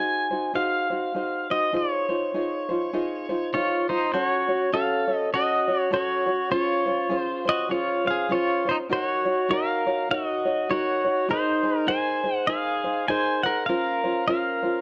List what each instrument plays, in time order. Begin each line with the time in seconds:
Already playing: ukulele D#4 F#4 G#4 C5, pedal steel guitar G#5
0.31 ukulele D#4 F#4 C5
0.54 ukulele D#4 F#4 G#4 C5, pedal steel guitar F5
0.90 ukulele D#4 F#4 C5
1.14 ukulele D#4 F#4 G#4 C5
1.50 ukulele D#4 F#4 C5, pedal steel guitar D#5
1.73 ukulele D#4 F4 G#4 C5, pedal steel guitar C#5
2.09 ukulele D#4 F4 C5
2.34 ukulele D#4 F4 G#4 C5
2.69 ukulele D#4 F4 C5
2.93 ukulele D#4 F4 G#4 C5
3.29 ukulele D#4 F4 C5
3.53 ukulele D#4 F4 G#4 C5, pedal steel guitar F4 C#5
3.89 pedal steel guitar D#4 C5, ukulele D#4 F4 C5
4.13 ukulele C#4 F#4 A4 C#5, pedal steel guitar F#4 C5
4.25 pedal steel guitar C#5
4.49 ukulele C#4 F#4 C#5
4.73 ukulele C#4 F#4 A4 C#5, pedal steel guitar A4 F5
5.08 ukulele C#4 F#4 C#5
5.17 pedal steel guitar D#5
5.33 ukulele C#4 F#4 A4 C#5, pedal steel guitar F#4 D#5
5.68 ukulele C#4 F#4 C#5
5.81 pedal steel guitar C#5
5.91 ukulele C#4 F#4 A4 C#5, pedal steel guitar C#5
5.96 pedal steel guitar F#4
6.26 ukulele C#4 F#4 C#5
6.51 ukulele C#4 F4 G#4 C5, pedal steel guitar F4 C#5
6.86 ukulele C#4 F4 C5
7.09 ukulele C#4 F4 G#4 C5
7.19 pedal steel guitar C5
7.45 ukulele C#4 F4 C5, pedal steel guitar D#5
7.50 pedal steel guitar F#4
7.69 ukulele C#4 F4 G#4 C5, pedal steel guitar C#5
7.74 pedal steel guitar F4
8.05 ukulele C#4 F4 C5, pedal steel guitar F5
8.11 pedal steel guitar G#4
8.29 ukulele C#4 F4 G#4 C5, pedal steel guitar C#5
8.35 pedal steel guitar F4
8.65 ukulele C#4 F4 C5, pedal steel guitar C5
8.71 pedal steel guitar D#4
8.89 ukulele D#4 F#4 A#4 C#5, pedal steel guitar C5
8.96 pedal steel guitar F#4
9.04 pedal steel guitar C#5
9.25 ukulele D#4 F#4 C#5
9.49 ukulele D#4 F#4 A#4 C#5, pedal steel guitar F5
9.53 pedal steel guitar A#4
9.87 ukulele D#4 F#4 C#5
10.09 ukulele D#4 F#4 A#4 C#5, pedal steel guitar D#5
10.14 pedal steel guitar F#4
10.45 ukulele D#4 F#4 C#5
10.70 ukulele D#4 F#4 A#4 C#5, pedal steel guitar F#4 C#5
11.04 ukulele D#4 F#4 C#5
11.28 ukulele D#4 G#4 A#4 C5, pedal steel guitar C5
11.33 pedal steel guitar D#4
11.63 ukulele D#4 G#4 C5
11.78 pedal steel guitar A#4
11.87 ukulele D#4 G#4 A#4 C5, pedal steel guitar C5 G#5
12.24 ukulele D#4 G#4 C5
12.36 pedal steel guitar F#5
12.47 ukulele D#4 G#4 A#4 C5, pedal steel guitar G#4 F5
12.84 ukulele D#4 G#4 C5
13.08 ukulele D#4 G#4 A#4 C5, pedal steel guitar C5 G#5
13.43 ukulele D#4 G#4 C5, pedal steel guitar A#4 F#5
13.66 ukulele C#4 F4 A#4 C5, pedal steel guitar A#4 F5
14.04 ukulele C#4 F4 C5
14.28 ukulele C#4 F4 A#4 C5, pedal steel guitar A#4 F5
14.63 ukulele C#4 F4 C5